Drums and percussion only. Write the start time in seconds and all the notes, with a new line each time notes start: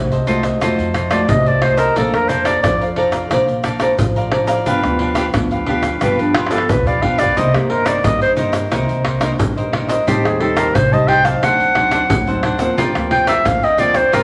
0.12 pandeiro, shaker
0.27 pandeiro, shaker
0.43 pandeiro, tamborim, shaker, surdo
0.61 pandeiro, tamborim, shaker, surdo
0.79 pandeiro, shaker
0.94 pandeiro, tamborim, shaker, surdo
1.11 pandeiro, tamborim, shaker, surdo
1.29 pandeiro, shaker, surdo
1.46 pandeiro, shaker
1.62 pandeiro, tamborim
1.78 pandeiro, shaker
1.96 pandeiro, shaker, surdo
2.14 pandeiro, tamborim, shaker
2.29 pandeiro, shaker
2.45 pandeiro, tamborim, shaker, surdo
2.64 pandeiro, tamborim, shaker, surdo
2.81 pandeiro, shaker
2.96 pandeiro
3.12 pandeiro, tamborim, shaker, surdo
3.31 pandeiro, tamborim, shaker, surdo
3.48 pandeiro, shaker
3.64 pandeiro, tamborim, shaker, surdo
3.80 pandeiro, tamborim, shaker, surdo
3.99 pandeiro, shaker, surdo
4.16 pandeiro, shaker
4.32 pandeiro, tamborim, surdo
4.47 pandeiro, shaker
4.66 pandeiro, shaker, surdo
4.84 pandeiro, tamborim, shaker
4.99 pandeiro
5.15 pandeiro, tamborim, shaker, surdo
5.34 pandeiro, tamborim, shaker, surdo
5.51 pandeiro, shaker
5.66 pandeiro
5.83 pandeiro, tamborim, shaker, surdo
6.01 pandeiro, tamborim, shaker, surdo
6.19 pandeiro, shaker
6.34 pandeiro, tamborim, surdo
6.46 tamborim
6.51 pandeiro, shaker, surdo
6.58 tamborim
6.69 pandeiro, shaker, surdo
6.81 surdo
6.87 pandeiro, shaker
7.02 pandeiro, surdo
7.19 pandeiro, shaker
7.26 surdo
7.37 pandeiro, shaker, surdo
7.54 pandeiro, tamborim, shaker
7.70 pandeiro
7.86 pandeiro, tamborim, shaker, surdo
8.04 pandeiro, tamborim, shaker, surdo
8.21 pandeiro, shaker
8.37 pandeiro, shaker
8.53 pandeiro, tamborim, shaker, surdo
8.72 pandeiro, tamborim, shaker, surdo
8.89 pandeiro, shaker
9.05 pandeiro, tamborim, surdo
9.21 pandeiro, tamborim, shaker, surdo
9.39 pandeiro, shaker, surdo
9.58 pandeiro, shaker
9.73 pandeiro, tamborim
9.89 pandeiro, shaker
10.08 pandeiro, shaker, surdo
10.25 pandeiro, tamborim, shaker
10.40 pandeiro
10.57 pandeiro, tamborim, shaker, surdo
10.75 pandeiro, tamborim, shaker, surdo
10.93 pandeiro, shaker
11.08 pandeiro
11.25 pandeiro, tamborim, shaker, surdo
11.43 pandeiro, tamborim, shaker, surdo
11.60 pandeiro, shaker
11.75 pandeiro, tamborim, surdo
11.91 pandeiro, tamborim, shaker, surdo
12.10 pandeiro, shaker, surdo
12.27 pandeiro, shaker
12.43 pandeiro, tamborim
12.59 pandeiro, shaker
12.78 pandeiro, shaker, surdo
12.95 pandeiro, tamborim, shaker
13.11 pandeiro
13.27 pandeiro, tamborim, shaker, surdo
13.45 pandeiro, tamborim, shaker, surdo
13.63 pandeiro, shaker
13.78 pandeiro, shaker
13.94 pandeiro, tamborim, shaker, surdo
14.13 pandeiro, tamborim, shaker, surdo